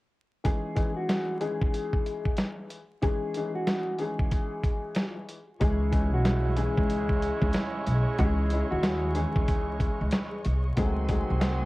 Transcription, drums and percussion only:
0.45 kick, closed hi-hat
0.76 kick, closed hi-hat
1.09 snare, closed hi-hat
1.41 closed hi-hat
1.61 kick
1.74 closed hi-hat
1.93 kick
2.06 closed hi-hat
2.25 kick
2.37 snare, closed hi-hat
2.70 closed hi-hat
3.02 kick, closed hi-hat
3.34 closed hi-hat
3.67 snare, closed hi-hat
3.99 closed hi-hat
4.19 kick
4.32 kick, closed hi-hat
4.64 kick, closed hi-hat
4.95 snare, closed hi-hat
5.29 closed hi-hat
5.61 kick, closed hi-hat
5.92 kick, closed hi-hat
6.25 snare, closed hi-hat
6.57 closed hi-hat
6.77 kick
6.90 closed hi-hat
7.09 kick
7.22 closed hi-hat
7.42 kick
7.53 snare, closed hi-hat
7.87 closed hi-hat
8.19 kick, closed hi-hat
8.50 closed hi-hat
8.83 snare, closed hi-hat
9.15 closed hi-hat
9.36 kick
9.48 kick, closed hi-hat
9.80 kick, closed hi-hat
10.11 snare, closed hi-hat
10.45 closed hi-hat
10.77 kick, closed hi-hat
11.09 kick, closed hi-hat
11.41 snare, closed hi-hat

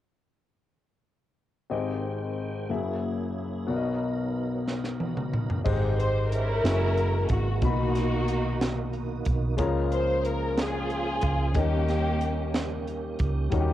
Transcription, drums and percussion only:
4.68 snare
4.84 snare
5.00 high tom
5.17 mid tom
5.33 mid tom
5.50 floor tom
5.66 kick, crash
6.00 closed hi-hat
6.32 closed hi-hat
6.65 snare, closed hi-hat
6.97 closed hi-hat
7.29 kick, closed hi-hat
7.62 kick, closed hi-hat
7.95 snare, closed hi-hat
8.28 closed hi-hat
8.61 snare, closed hi-hat
8.93 closed hi-hat
9.25 kick, closed hi-hat
9.58 kick, closed hi-hat
9.92 closed hi-hat
10.25 closed hi-hat
10.58 snare, closed hi-hat
10.90 closed hi-hat
11.22 kick, closed hi-hat
11.55 kick, closed hi-hat
11.88 snare, closed hi-hat
12.21 closed hi-hat
12.54 snare, closed hi-hat
12.87 closed hi-hat
13.19 kick, closed hi-hat
13.52 kick, closed hi-hat

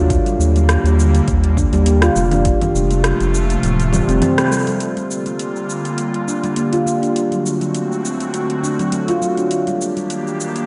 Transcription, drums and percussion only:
0.10 kick, closed hi-hat, cabasa
0.26 closed hi-hat, cabasa
0.41 cabasa
0.56 closed hi-hat, cabasa
0.69 cross-stick, closed hi-hat, cabasa
0.86 closed hi-hat, cabasa
1.00 cabasa
1.15 closed hi-hat, cabasa
1.28 kick, closed hi-hat, cabasa
1.44 closed hi-hat
1.57 kick, cabasa
1.73 closed hi-hat, cabasa
1.86 closed hi-hat, cabasa
2.02 cross-stick, closed hi-hat, cabasa
2.16 cabasa
2.31 closed hi-hat, low conga, cabasa
2.45 kick, closed hi-hat, cabasa
2.61 closed hi-hat, low conga, cabasa
2.76 cabasa
2.91 closed hi-hat, cabasa
3.04 cross-stick, closed hi-hat, cabasa
3.20 closed hi-hat, cabasa
3.35 cabasa
3.50 closed hi-hat, cabasa
3.63 closed hi-hat, cabasa
3.80 closed hi-hat, cabasa
3.93 low conga, cabasa
4.09 closed hi-hat, cabasa
4.22 closed hi-hat, low conga, cabasa
4.38 cross-stick, closed hi-hat, cabasa
4.52 cabasa
4.67 closed hi-hat, cabasa
4.80 closed hi-hat, cabasa
4.97 closed hi-hat, cabasa
5.11 cabasa
5.26 closed hi-hat, cabasa
5.39 closed hi-hat, cabasa
5.56 cabasa
5.70 cabasa
5.85 closed hi-hat, cabasa
5.98 closed hi-hat, cabasa
6.14 closed hi-hat
6.28 cabasa
6.44 closed hi-hat, cabasa
6.56 closed hi-hat, cabasa
6.73 closed hi-hat, cabasa
6.87 cabasa
7.03 closed hi-hat, cabasa
7.16 closed hi-hat, cabasa
7.32 closed hi-hat, cabasa
7.46 cabasa
7.61 closed hi-hat, cabasa
7.75 closed hi-hat, cabasa
7.92 cabasa
8.05 cabasa
8.20 closed hi-hat, cabasa
8.34 closed hi-hat, cabasa
8.50 closed hi-hat
8.64 cabasa
8.79 closed hi-hat, cabasa
8.92 closed hi-hat, cabasa
9.08 closed hi-hat, cabasa
9.22 cabasa
9.37 closed hi-hat, cabasa
9.51 closed hi-hat, cabasa
9.67 closed hi-hat, cabasa
9.81 cabasa
9.97 closed hi-hat, cabasa
10.10 closed hi-hat, cabasa
10.27 cabasa
10.40 cabasa
10.56 closed hi-hat, cabasa

